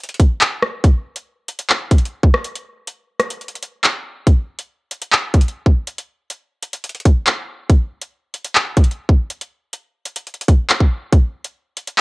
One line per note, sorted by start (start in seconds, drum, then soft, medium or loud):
0.04 closed hi-hat soft
0.09 closed hi-hat soft
0.14 closed hi-hat soft
0.20 kick loud
0.20 closed hi-hat medium
0.41 clap loud
0.41 closed hi-hat medium
0.62 cross-stick loud
0.84 kick loud
0.84 closed hi-hat medium
1.16 closed hi-hat medium
1.48 closed hi-hat medium
1.59 closed hi-hat medium
1.70 clap loud
1.91 kick loud
1.91 closed hi-hat medium
1.98 closed hi-hat medium
2.05 closed hi-hat soft
2.23 kick loud
2.34 cross-stick loud
2.44 closed hi-hat medium
2.55 closed hi-hat medium
2.87 closed hi-hat medium
3.20 cross-stick loud
3.20 closed hi-hat medium
3.30 closed hi-hat medium
3.41 closed hi-hat soft
3.48 closed hi-hat soft
3.55 closed hi-hat medium
3.63 closed hi-hat medium
3.84 clap loud
3.84 closed hi-hat medium
4.27 kick loud
4.27 closed hi-hat medium
4.59 closed hi-hat medium
4.91 closed hi-hat medium
5.02 closed hi-hat medium
5.13 clap loud
5.34 kick loud
5.34 closed hi-hat medium
5.41 closed hi-hat medium
5.48 closed hi-hat soft
5.66 kick medium
5.87 closed hi-hat medium
5.98 closed hi-hat medium
6.30 closed hi-hat medium
6.63 closed hi-hat medium
6.73 closed hi-hat medium
6.84 closed hi-hat medium
6.89 closed hi-hat soft
6.95 closed hi-hat soft
7.00 closed hi-hat soft
7.05 kick loud
7.05 closed hi-hat medium
7.27 clap loud
7.27 closed hi-hat medium
7.70 kick loud
7.70 closed hi-hat medium
8.02 closed hi-hat medium
8.34 closed hi-hat medium
8.45 closed hi-hat medium
8.55 clap loud
8.77 kick loud
8.77 closed hi-hat medium
8.84 closed hi-hat medium
8.91 closed hi-hat soft
9.09 kick medium
9.30 closed hi-hat medium
9.41 closed hi-hat medium
9.73 closed hi-hat medium
10.05 closed hi-hat medium
10.16 closed hi-hat medium
10.27 closed hi-hat soft
10.34 closed hi-hat soft
10.41 closed hi-hat medium
10.48 kick loud
10.48 closed hi-hat medium
10.70 clap loud
10.70 closed hi-hat medium
10.80 kick medium
11.13 kick loud
11.13 closed hi-hat medium
11.44 closed hi-hat medium
11.77 closed hi-hat medium
11.87 closed hi-hat medium